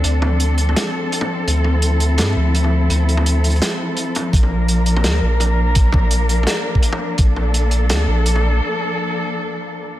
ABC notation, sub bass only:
X:1
M:4/4
L:1/8
Q:"Swing 16ths" 1/4=168
K:Bblyd
V:1 name="Sub bass" clef=bass
D,,4 z4 | D,,4 G,, D,,3 | D,,4 z4 | B,,,4 D,, B,,,3 |
B,,,4 z4 | B,,,4 D,, B,,,3 | z8 |]